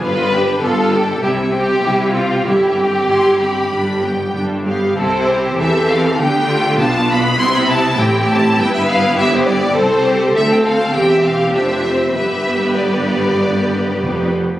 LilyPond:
<<
  \new Staff \with { instrumentName = "Violin section" } { \time 4/4 \key c \major \tempo 4 = 99 f''8 g''8 f''8 g''8 e''8 g''8 e''8 g''8 | e''8 g''8 c'''8 b''4 g''8 g''8 f''8 | c''4 e''8 f''8 g''4 a''8 b''8 | c'''16 b''16 a''8 g''8 a''8 g''16 e''16 f''8 e''16 c''16 d''8 |
c''4 e''16 g''16 f''8 g''16 e''16 f''8 e''4 | e''4 d''2~ d''8 r8 | }
  \new Staff \with { instrumentName = "Violin section" } { \time 4/4 \key c \major b'4 a'4 g'8 g'4 f'8 | g'2. r4 | a'8 g'8 a'4 g'8 f'4. | e'4 g'4 b'4 g'4 |
a'8 g'8 a'4 g'4 c''4 | b'2.~ b'8 r8 | }
  \new Staff \with { instrumentName = "Viola section" } { \time 4/4 \key c \major << { f'8 g'8 f'8 g'8 e'8 g'8 e'8 g'8 | e'8 g'8 e'8 g'8 d'8 g'8 d'8 g'8 | e'4 g'4 g'4 d'4 | e'1 |
a'2 g'2 | g'2.~ g'8 r8 | } \\ { b8 d'8 b8 d'8 g8 c'8 g8 c'8 | g8 c'8 g8 c'8 g8 b8 g8 b8 | c'4 c'4 b8 a8 b4~ | b4 c'4 b2 |
c'4 c'2 d'8 c'8 | b2.~ b8 r8 | } >> }
  \new Staff \with { instrumentName = "Cello section" } { \clef bass \time 4/4 \key c \major g,4 g,4 c4 c4 | g,4 g,4 g,4 g,4 | c4 e4 d4 b,4 | c4 a,4 g,2 |
c,4 d,4 e,4 f,4 | g,2. f,8 r8 | }
  \new Staff \with { instrumentName = "Double bass section" } { \clef bass \time 4/4 \key c \major g,,4 g,,4 c,4 c,4 | g,,4 g,,4 g,,4 g,,4 | c,4 e,4 d,4 b,,4 | c,4 a,,4 g,,2 |
c,4 d,4 e,,4 f,,4 | g,,2. f,,8 r8 | }
>>